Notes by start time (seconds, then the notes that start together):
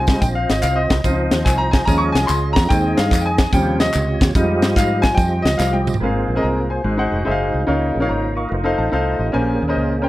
Already playing: C2 C4 F4 C5 D#5 G#5
0.07 G3 G#3 D#4, kick, snare, closed hi-hat, tambourine
0.21 A#1 G5, kick, closed hi-hat, tambourine
0.35 F5
0.49 G#1 D#5, snare, closed hi-hat, tambourine
0.62 C2 F5, clap, closed hi-hat, tambourine
0.76 D#5
0.90 C2, kick, snare, closed hi-hat, tambourine
1.04 C#2 F3 C4 D#4 F4 C5 D#5, kick, closed hi-hat, tambourine
1.31 D#2, snare, closed hi-hat, tambourine
1.45 C2 G#5, kick, clap, closed hi-hat, tambourine
1.58 A#5
1.71 G#5, kick, snare, closed hi-hat, tambourine
1.85 D#2 F3 G#3 C#4 F4 G#4 D#5 A#5, kick, closed hi-hat, tambourine
1.98 C#6
2.12 C2 G#5, snare, closed hi-hat
2.16 tambourine
2.26 C#2 B5 C6, clap, tambourine
2.30 closed hi-hat
2.53 F2 A#5, kick, snare, closed hi-hat
2.58 tambourine
2.69 D#2 D#3 G#3 C4 D#4 G#4 D#5 G5, kick, closed hi-hat, tambourine
2.97 G2 F5, snare, closed hi-hat, tambourine
3.11 F2, kick, clap, closed hi-hat, tambourine
3.21 G5
3.26 G#5
3.38 kick, snare, closed hi-hat, tambourine
3.53 D#2 C3 C#3 F3 G3 C4 F4 G4 C#5 G5, kick, closed hi-hat, tambourine
3.80 D#5, snare, closed hi-hat, tambourine
3.94 C#2, clap, closed hi-hat, tambourine
4.21 D#2, kick, snare, closed hi-hat, tambourine
4.35 F2 F3 G3 G#3 D#4 F4 G4 D#5, kick, closed hi-hat, tambourine
4.62 G2, snare, closed hi-hat, tambourine
4.76 G#2 F5, kick, clap, closed hi-hat, tambourine
5.02 G#5, kick, snare, closed hi-hat, tambourine
5.15 F2 G5, kick, closed hi-hat
5.19 tambourine
5.42 C#2 D#5, snare, closed hi-hat
5.47 tambourine
5.58 C2 F5, snare, clap, tambourine
5.73 G5, high tom
5.87 mid tom, tambourine
5.94 floor tom
6.00 G#1 G#2 A#3 C4 F4 G#4 A#4 B4 F5
6.05 C5
6.28 A#1
6.35 C4 G#4 A#4 D#5
6.42 C2 A#5
6.70 C5 G#5
6.84 G#1 G#2 G#3 D#4 F#4 C5
6.97 D#4 G#4 C5 F#5
7.12 F1
7.25 F#1 D#4 G#4 C5 E5
7.31 F5
7.54 C2
7.67 C#2 C#3 A#3 D#4 F4 A#4 C#5 F5
7.94 A#1 G#4 C#5
8.00 D#4 A#4 C#5 F5
8.07 G#1 C5 C#5 F5 A#5
8.35 A#4 D#5 F5 C#6
8.49 F1 A3 D#4 F4 B4
8.54 C5
8.64 D#4 A4 C5 F5
8.78 A1 C5 F5 A5
8.92 C2 D#4 A4 C5 D#5 F5 A5
9.18 A1 G4 C5 D#5
9.32 A#1 A#2 A#3 C#4 G#4 A#4 C5 G#5
9.62 D#2
9.68 C#4 A#4 C5 D#5
9.77 C#2
10.02 C#4 A#4 C5 G5